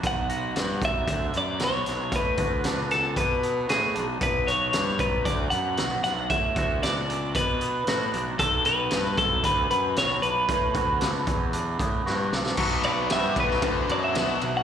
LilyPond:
<<
  \new Staff \with { instrumentName = "Clean electric guitar" } { \time 4/4 \key b \minor \tempo 4 = 115 fis''4. e''4 d''8 cis''4 | b'4. a'8 b'4 gis'8. r16 | b'8 cis''4 b'8 d''8 fis''4 fis''8 | e''4 d''4 b'4. r8 |
a'8 b'4 a'8 b'8 b'8 cis''8 b'8~ | b'2. r4 | r8 d''8 e''8 b'4 d''16 e''4 fis''16 | }
  \new Staff \with { instrumentName = "Clean electric guitar" } { \time 4/4 \key b \minor <b, b d' fis'>8 fis'8 d'8 fis8 d'8 b8 fis'8 d'8 | b,8 fis'8 d'8 fis8 d'8 b8 fis'8 d'8 | b,8 fis'8 d'8 fis8 d'8 b8 fis'8 d'8 | b,8 fis'8 d'8 fis8 d'8 b8 fis'8 d'8 |
b,8 fis'8 d'8 fis8 d'8 b8 fis'8 d'8 | b,8 fis'8 d'8 fis8 d'8 b8 fis'8 d'8 | <b, fis b d' fis'>8 <b d' fis'>8 <b, fis b d' fis'>8 <b d' fis'>8 <fis b d' fis'>8 <b, fis b d' fis'>8 <fis b d' fis'>8 <b d' fis'>8 | }
  \new Staff \with { instrumentName = "Distorted electric guitar" } { \clef bass \time 4/4 \key b \minor r1 | r1 | r1 | r1 |
r1 | r1 | <b, b>4 <g g'>8 <b, b>8 <d d'>8 <fis fis'>8 <b, b>8 b,8 | }
  \new Staff \with { instrumentName = "Fingered electric bass" } { \clef bass \time 4/4 \key b \minor b,,4 g,8 b,,8 d,8 fis,8 b,,8 b,,8 | a,8 d,8 cis,4 b,4 a,8 b,,8 | b,,4 g,8 b,,8 d,8 fis,8 b,,8 b,,8 | a,8 d,8 cis,4 b,4 a,8 b,,8 |
b,,4 g,8 b,,8 d,8 fis,8 b,,8 b,,8 | a,8 d,8 cis,8 e,4 a,8 g,8 b,,8 | b,,4 g,8 b,,8 d,8 fis,8 b,,8 b,,8 | }
  \new DrumStaff \with { instrumentName = "Drums" } \drummode { \time 4/4 <hh bd>8 hh8 <hh sn>8 <hh bd>8 <hh bd>8 hh8 <hh sn>8 <hh sn>8 | <hh bd>8 <hh bd>8 <hh sn>8 <hh sn>8 <hh bd>8 hh8 <hh sn>8 hh8 | <hh bd>8 hh8 <hh sn>8 <hh bd>8 <hh bd>8 hh8 <hh sn>8 <hh sn>8 | <hh bd>8 <hh bd>8 <hh sn>8 hh8 <hh bd>8 hh8 <hh sn>8 hh8 |
<hh bd>8 hh8 <hh sn>8 <hh bd>8 <hh bd>8 hh8 <hh sn>8 hh8 | <hh bd>8 <hh bd>8 <hh sn>8 <hh bd>8 hh8 <hh bd>8 sn8 sn16 sn16 | <cymc bd>8 <cymr sn>8 <cymr sn>8 <bd cymr>16 sn16 <bd cymr>8 cymr8 <cymr sn>8 cymr8 | }
>>